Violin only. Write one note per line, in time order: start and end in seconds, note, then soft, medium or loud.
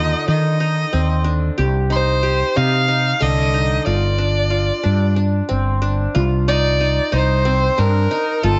0.00 0.28 D#5 medium
0.29 1.23 D#5 medium
1.92 2.58 C5 medium
2.56 3.24 F5 medium
3.22 3.87 D#5 medium
3.87 5.14 D5 medium
6.49 7.10 D5 medium
7.15 7.81 C5 medium
7.80 8.46 A#4 medium
8.45 8.59 A4 medium